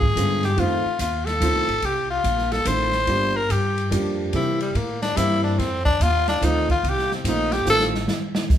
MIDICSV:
0, 0, Header, 1, 6, 480
1, 0, Start_track
1, 0, Tempo, 417246
1, 664, Time_signature, 3, 2, 24, 8
1, 9874, End_track
2, 0, Start_track
2, 0, Title_t, "Tenor saxophone"
2, 0, Program_c, 0, 66
2, 0, Note_on_c, 0, 68, 105
2, 516, Note_on_c, 0, 67, 93
2, 533, Note_off_c, 0, 68, 0
2, 684, Note_on_c, 0, 65, 94
2, 701, Note_off_c, 0, 67, 0
2, 1154, Note_off_c, 0, 65, 0
2, 1165, Note_on_c, 0, 65, 84
2, 1442, Note_on_c, 0, 69, 119
2, 1459, Note_off_c, 0, 65, 0
2, 2124, Note_on_c, 0, 67, 92
2, 2142, Note_off_c, 0, 69, 0
2, 2413, Note_off_c, 0, 67, 0
2, 2420, Note_on_c, 0, 65, 89
2, 2899, Note_on_c, 0, 69, 100
2, 2917, Note_off_c, 0, 65, 0
2, 3076, Note_on_c, 0, 72, 110
2, 3093, Note_off_c, 0, 69, 0
2, 3871, Note_on_c, 0, 70, 92
2, 3888, Note_off_c, 0, 72, 0
2, 4038, Note_on_c, 0, 67, 78
2, 4056, Note_off_c, 0, 70, 0
2, 4510, Note_off_c, 0, 67, 0
2, 5010, Note_on_c, 0, 64, 75
2, 5287, Note_off_c, 0, 64, 0
2, 5313, Note_on_c, 0, 55, 70
2, 5483, Note_on_c, 0, 58, 72
2, 5501, Note_off_c, 0, 55, 0
2, 5770, Note_off_c, 0, 58, 0
2, 5777, Note_on_c, 0, 62, 97
2, 5946, Note_on_c, 0, 64, 110
2, 5964, Note_off_c, 0, 62, 0
2, 6248, Note_off_c, 0, 64, 0
2, 6255, Note_on_c, 0, 62, 80
2, 6424, Note_on_c, 0, 60, 82
2, 6441, Note_off_c, 0, 62, 0
2, 6727, Note_off_c, 0, 60, 0
2, 6734, Note_on_c, 0, 62, 104
2, 6935, Note_on_c, 0, 65, 107
2, 6953, Note_off_c, 0, 62, 0
2, 7223, Note_off_c, 0, 65, 0
2, 7230, Note_on_c, 0, 62, 99
2, 7420, Note_on_c, 0, 63, 87
2, 7438, Note_off_c, 0, 62, 0
2, 7712, Note_off_c, 0, 63, 0
2, 7718, Note_on_c, 0, 65, 88
2, 7928, Note_on_c, 0, 67, 93
2, 7946, Note_off_c, 0, 65, 0
2, 8206, Note_off_c, 0, 67, 0
2, 8224, Note_on_c, 0, 60, 61
2, 8376, Note_on_c, 0, 63, 90
2, 8393, Note_off_c, 0, 60, 0
2, 8657, Note_on_c, 0, 67, 104
2, 8674, Note_off_c, 0, 63, 0
2, 8822, Note_off_c, 0, 67, 0
2, 8856, Note_on_c, 0, 69, 121
2, 9033, Note_off_c, 0, 69, 0
2, 9874, End_track
3, 0, Start_track
3, 0, Title_t, "Upright piano"
3, 0, Program_c, 1, 0
3, 178, Note_on_c, 1, 50, 63
3, 185, Note_on_c, 1, 53, 58
3, 190, Note_on_c, 1, 56, 55
3, 197, Note_on_c, 1, 59, 58
3, 204, Note_on_c, 1, 65, 73
3, 462, Note_off_c, 1, 50, 0
3, 465, Note_off_c, 1, 53, 0
3, 468, Note_off_c, 1, 56, 0
3, 471, Note_off_c, 1, 59, 0
3, 475, Note_off_c, 1, 65, 0
3, 647, Note_on_c, 1, 51, 69
3, 658, Note_on_c, 1, 53, 66
3, 663, Note_on_c, 1, 57, 67
3, 670, Note_on_c, 1, 60, 66
3, 676, Note_on_c, 1, 65, 74
3, 936, Note_off_c, 1, 51, 0
3, 942, Note_off_c, 1, 53, 0
3, 944, Note_off_c, 1, 57, 0
3, 948, Note_off_c, 1, 60, 0
3, 950, Note_off_c, 1, 65, 0
3, 1610, Note_on_c, 1, 51, 68
3, 1620, Note_on_c, 1, 53, 69
3, 1624, Note_on_c, 1, 57, 62
3, 1629, Note_on_c, 1, 60, 64
3, 1631, Note_on_c, 1, 65, 80
3, 1898, Note_off_c, 1, 51, 0
3, 1903, Note_off_c, 1, 53, 0
3, 1904, Note_off_c, 1, 57, 0
3, 1907, Note_off_c, 1, 60, 0
3, 1908, Note_off_c, 1, 65, 0
3, 3052, Note_on_c, 1, 51, 64
3, 3063, Note_on_c, 1, 53, 57
3, 3071, Note_on_c, 1, 57, 63
3, 3076, Note_on_c, 1, 60, 61
3, 3082, Note_on_c, 1, 65, 78
3, 3338, Note_off_c, 1, 51, 0
3, 3344, Note_off_c, 1, 53, 0
3, 3348, Note_off_c, 1, 57, 0
3, 3350, Note_off_c, 1, 60, 0
3, 3353, Note_off_c, 1, 65, 0
3, 3526, Note_on_c, 1, 53, 56
3, 3536, Note_on_c, 1, 55, 58
3, 3540, Note_on_c, 1, 67, 65
3, 3541, Note_on_c, 1, 58, 54
3, 3545, Note_on_c, 1, 62, 61
3, 3815, Note_off_c, 1, 53, 0
3, 3820, Note_off_c, 1, 55, 0
3, 3822, Note_off_c, 1, 58, 0
3, 3822, Note_off_c, 1, 67, 0
3, 3825, Note_off_c, 1, 62, 0
3, 4487, Note_on_c, 1, 53, 67
3, 4494, Note_on_c, 1, 55, 68
3, 4497, Note_on_c, 1, 58, 66
3, 4500, Note_on_c, 1, 62, 65
3, 4503, Note_on_c, 1, 67, 73
3, 4966, Note_off_c, 1, 58, 0
3, 4968, Note_off_c, 1, 55, 0
3, 4974, Note_off_c, 1, 53, 0
3, 4979, Note_off_c, 1, 67, 0
3, 4980, Note_on_c, 1, 52, 64
3, 4981, Note_off_c, 1, 62, 0
3, 4983, Note_on_c, 1, 58, 54
3, 4985, Note_on_c, 1, 55, 59
3, 4993, Note_on_c, 1, 60, 50
3, 4996, Note_on_c, 1, 67, 65
3, 5262, Note_off_c, 1, 52, 0
3, 5263, Note_off_c, 1, 58, 0
3, 5264, Note_off_c, 1, 55, 0
3, 5268, Note_off_c, 1, 60, 0
3, 5270, Note_off_c, 1, 67, 0
3, 5927, Note_on_c, 1, 52, 70
3, 5930, Note_on_c, 1, 55, 61
3, 5935, Note_on_c, 1, 60, 62
3, 5942, Note_on_c, 1, 58, 69
3, 5947, Note_on_c, 1, 67, 72
3, 6414, Note_off_c, 1, 52, 0
3, 6415, Note_off_c, 1, 55, 0
3, 6418, Note_off_c, 1, 60, 0
3, 6421, Note_off_c, 1, 58, 0
3, 6423, Note_off_c, 1, 67, 0
3, 7369, Note_on_c, 1, 51, 73
3, 7376, Note_on_c, 1, 53, 72
3, 7379, Note_on_c, 1, 57, 71
3, 7383, Note_on_c, 1, 65, 80
3, 7390, Note_on_c, 1, 60, 70
3, 7655, Note_off_c, 1, 51, 0
3, 7659, Note_off_c, 1, 53, 0
3, 7660, Note_off_c, 1, 57, 0
3, 7662, Note_off_c, 1, 65, 0
3, 7666, Note_off_c, 1, 60, 0
3, 8338, Note_on_c, 1, 51, 69
3, 8341, Note_on_c, 1, 53, 66
3, 8342, Note_on_c, 1, 60, 61
3, 8344, Note_on_c, 1, 57, 56
3, 8360, Note_on_c, 1, 65, 73
3, 8619, Note_off_c, 1, 51, 0
3, 8621, Note_off_c, 1, 53, 0
3, 8622, Note_off_c, 1, 60, 0
3, 8623, Note_off_c, 1, 57, 0
3, 8631, Note_off_c, 1, 65, 0
3, 8799, Note_on_c, 1, 51, 82
3, 8804, Note_on_c, 1, 53, 69
3, 8813, Note_on_c, 1, 57, 64
3, 8817, Note_on_c, 1, 60, 65
3, 8824, Note_on_c, 1, 65, 90
3, 9090, Note_off_c, 1, 51, 0
3, 9093, Note_off_c, 1, 53, 0
3, 9097, Note_off_c, 1, 57, 0
3, 9099, Note_off_c, 1, 60, 0
3, 9103, Note_off_c, 1, 65, 0
3, 9874, End_track
4, 0, Start_track
4, 0, Title_t, "Upright bass"
4, 0, Program_c, 2, 32
4, 0, Note_on_c, 2, 44, 93
4, 169, Note_off_c, 2, 44, 0
4, 180, Note_on_c, 2, 43, 89
4, 647, Note_off_c, 2, 43, 0
4, 660, Note_on_c, 2, 41, 94
4, 952, Note_off_c, 2, 41, 0
4, 1136, Note_on_c, 2, 39, 82
4, 1605, Note_off_c, 2, 39, 0
4, 1615, Note_on_c, 2, 38, 83
4, 1765, Note_off_c, 2, 38, 0
4, 1765, Note_on_c, 2, 36, 55
4, 1924, Note_off_c, 2, 36, 0
4, 1931, Note_on_c, 2, 33, 64
4, 2086, Note_off_c, 2, 33, 0
4, 2100, Note_on_c, 2, 36, 73
4, 2567, Note_off_c, 2, 36, 0
4, 2576, Note_on_c, 2, 34, 87
4, 3045, Note_off_c, 2, 34, 0
4, 3052, Note_on_c, 2, 33, 90
4, 3523, Note_off_c, 2, 33, 0
4, 3530, Note_on_c, 2, 31, 73
4, 4002, Note_off_c, 2, 31, 0
4, 4015, Note_on_c, 2, 43, 75
4, 4484, Note_off_c, 2, 43, 0
4, 4499, Note_on_c, 2, 41, 90
4, 4966, Note_off_c, 2, 41, 0
4, 4980, Note_on_c, 2, 48, 85
4, 5446, Note_off_c, 2, 48, 0
4, 5460, Note_on_c, 2, 45, 81
4, 5926, Note_off_c, 2, 45, 0
4, 5945, Note_on_c, 2, 43, 87
4, 6408, Note_off_c, 2, 43, 0
4, 6424, Note_on_c, 2, 41, 96
4, 6887, Note_off_c, 2, 41, 0
4, 6904, Note_on_c, 2, 39, 95
4, 7367, Note_off_c, 2, 39, 0
4, 7383, Note_on_c, 2, 38, 81
4, 7847, Note_off_c, 2, 38, 0
4, 7859, Note_on_c, 2, 36, 81
4, 8325, Note_off_c, 2, 36, 0
4, 8331, Note_on_c, 2, 34, 89
4, 8801, Note_off_c, 2, 34, 0
4, 8807, Note_on_c, 2, 33, 88
4, 9279, Note_off_c, 2, 33, 0
4, 9874, End_track
5, 0, Start_track
5, 0, Title_t, "Muted upright bass strokes"
5, 974, Note_on_c, 9, 29, 41
5, 1089, Note_off_c, 9, 29, 0
5, 9874, End_track
6, 0, Start_track
6, 0, Title_t, "Drums"
6, 20, Note_on_c, 9, 36, 53
6, 135, Note_off_c, 9, 36, 0
6, 187, Note_on_c, 9, 36, 21
6, 194, Note_on_c, 9, 44, 55
6, 194, Note_on_c, 9, 51, 80
6, 302, Note_off_c, 9, 36, 0
6, 309, Note_off_c, 9, 44, 0
6, 309, Note_off_c, 9, 51, 0
6, 494, Note_on_c, 9, 51, 37
6, 495, Note_on_c, 9, 38, 42
6, 609, Note_off_c, 9, 51, 0
6, 611, Note_off_c, 9, 38, 0
6, 663, Note_on_c, 9, 36, 19
6, 663, Note_on_c, 9, 51, 62
6, 778, Note_off_c, 9, 36, 0
6, 778, Note_off_c, 9, 51, 0
6, 1141, Note_on_c, 9, 44, 69
6, 1141, Note_on_c, 9, 51, 70
6, 1143, Note_on_c, 9, 36, 24
6, 1256, Note_off_c, 9, 44, 0
6, 1256, Note_off_c, 9, 51, 0
6, 1258, Note_off_c, 9, 36, 0
6, 1461, Note_on_c, 9, 51, 49
6, 1462, Note_on_c, 9, 38, 41
6, 1576, Note_off_c, 9, 51, 0
6, 1577, Note_off_c, 9, 38, 0
6, 1623, Note_on_c, 9, 36, 26
6, 1628, Note_on_c, 9, 44, 67
6, 1628, Note_on_c, 9, 51, 83
6, 1738, Note_off_c, 9, 36, 0
6, 1743, Note_off_c, 9, 44, 0
6, 1743, Note_off_c, 9, 51, 0
6, 1939, Note_on_c, 9, 51, 45
6, 2054, Note_off_c, 9, 51, 0
6, 2098, Note_on_c, 9, 51, 62
6, 2101, Note_on_c, 9, 36, 24
6, 2213, Note_off_c, 9, 51, 0
6, 2216, Note_off_c, 9, 36, 0
6, 2580, Note_on_c, 9, 44, 55
6, 2580, Note_on_c, 9, 51, 67
6, 2581, Note_on_c, 9, 36, 19
6, 2696, Note_off_c, 9, 36, 0
6, 2696, Note_off_c, 9, 44, 0
6, 2696, Note_off_c, 9, 51, 0
6, 2743, Note_on_c, 9, 38, 28
6, 2858, Note_off_c, 9, 38, 0
6, 2894, Note_on_c, 9, 51, 49
6, 2906, Note_on_c, 9, 38, 45
6, 3009, Note_off_c, 9, 51, 0
6, 3022, Note_off_c, 9, 38, 0
6, 3053, Note_on_c, 9, 44, 67
6, 3053, Note_on_c, 9, 51, 79
6, 3058, Note_on_c, 9, 36, 22
6, 3168, Note_off_c, 9, 44, 0
6, 3168, Note_off_c, 9, 51, 0
6, 3173, Note_off_c, 9, 36, 0
6, 3360, Note_on_c, 9, 38, 39
6, 3475, Note_off_c, 9, 38, 0
6, 3534, Note_on_c, 9, 51, 68
6, 3539, Note_on_c, 9, 36, 27
6, 3649, Note_off_c, 9, 51, 0
6, 3654, Note_off_c, 9, 36, 0
6, 4024, Note_on_c, 9, 36, 30
6, 4026, Note_on_c, 9, 44, 64
6, 4026, Note_on_c, 9, 51, 71
6, 4139, Note_off_c, 9, 36, 0
6, 4141, Note_off_c, 9, 44, 0
6, 4141, Note_off_c, 9, 51, 0
6, 4344, Note_on_c, 9, 51, 50
6, 4459, Note_off_c, 9, 51, 0
6, 4505, Note_on_c, 9, 36, 22
6, 4510, Note_on_c, 9, 44, 63
6, 4510, Note_on_c, 9, 51, 80
6, 4620, Note_off_c, 9, 36, 0
6, 4625, Note_off_c, 9, 44, 0
6, 4625, Note_off_c, 9, 51, 0
6, 4980, Note_on_c, 9, 51, 67
6, 4983, Note_on_c, 9, 36, 26
6, 5095, Note_off_c, 9, 51, 0
6, 5098, Note_off_c, 9, 36, 0
6, 5298, Note_on_c, 9, 51, 50
6, 5413, Note_off_c, 9, 51, 0
6, 5464, Note_on_c, 9, 36, 26
6, 5467, Note_on_c, 9, 51, 60
6, 5579, Note_off_c, 9, 36, 0
6, 5582, Note_off_c, 9, 51, 0
6, 5780, Note_on_c, 9, 51, 47
6, 5781, Note_on_c, 9, 38, 57
6, 5895, Note_off_c, 9, 51, 0
6, 5896, Note_off_c, 9, 38, 0
6, 5947, Note_on_c, 9, 36, 24
6, 5949, Note_on_c, 9, 44, 60
6, 5949, Note_on_c, 9, 51, 79
6, 6062, Note_off_c, 9, 36, 0
6, 6064, Note_off_c, 9, 44, 0
6, 6064, Note_off_c, 9, 51, 0
6, 6426, Note_on_c, 9, 36, 26
6, 6436, Note_on_c, 9, 51, 61
6, 6437, Note_on_c, 9, 38, 38
6, 6541, Note_off_c, 9, 36, 0
6, 6551, Note_off_c, 9, 51, 0
6, 6552, Note_off_c, 9, 38, 0
6, 6737, Note_on_c, 9, 36, 55
6, 6852, Note_off_c, 9, 36, 0
6, 6905, Note_on_c, 9, 36, 20
6, 6911, Note_on_c, 9, 44, 66
6, 6911, Note_on_c, 9, 51, 80
6, 7020, Note_off_c, 9, 36, 0
6, 7026, Note_off_c, 9, 44, 0
6, 7026, Note_off_c, 9, 51, 0
6, 7220, Note_on_c, 9, 51, 53
6, 7221, Note_on_c, 9, 38, 60
6, 7335, Note_off_c, 9, 51, 0
6, 7336, Note_off_c, 9, 38, 0
6, 7383, Note_on_c, 9, 36, 24
6, 7390, Note_on_c, 9, 44, 60
6, 7390, Note_on_c, 9, 51, 72
6, 7498, Note_off_c, 9, 36, 0
6, 7505, Note_off_c, 9, 44, 0
6, 7505, Note_off_c, 9, 51, 0
6, 7696, Note_on_c, 9, 36, 44
6, 7703, Note_on_c, 9, 51, 43
6, 7811, Note_off_c, 9, 36, 0
6, 7818, Note_off_c, 9, 51, 0
6, 7865, Note_on_c, 9, 36, 21
6, 7873, Note_on_c, 9, 51, 66
6, 7980, Note_off_c, 9, 36, 0
6, 7988, Note_off_c, 9, 51, 0
6, 8035, Note_on_c, 9, 38, 30
6, 8150, Note_off_c, 9, 38, 0
6, 8184, Note_on_c, 9, 38, 48
6, 8299, Note_off_c, 9, 38, 0
6, 8340, Note_on_c, 9, 36, 28
6, 8340, Note_on_c, 9, 44, 64
6, 8340, Note_on_c, 9, 51, 82
6, 8455, Note_off_c, 9, 36, 0
6, 8455, Note_off_c, 9, 44, 0
6, 8455, Note_off_c, 9, 51, 0
6, 8649, Note_on_c, 9, 51, 54
6, 8650, Note_on_c, 9, 38, 48
6, 8764, Note_off_c, 9, 51, 0
6, 8765, Note_off_c, 9, 38, 0
6, 8816, Note_on_c, 9, 44, 74
6, 8931, Note_off_c, 9, 44, 0
6, 8973, Note_on_c, 9, 38, 64
6, 9088, Note_off_c, 9, 38, 0
6, 9142, Note_on_c, 9, 38, 71
6, 9257, Note_off_c, 9, 38, 0
6, 9293, Note_on_c, 9, 38, 107
6, 9408, Note_off_c, 9, 38, 0
6, 9602, Note_on_c, 9, 38, 84
6, 9717, Note_off_c, 9, 38, 0
6, 9776, Note_on_c, 9, 44, 54
6, 9778, Note_on_c, 9, 36, 75
6, 9874, Note_off_c, 9, 36, 0
6, 9874, Note_off_c, 9, 44, 0
6, 9874, End_track
0, 0, End_of_file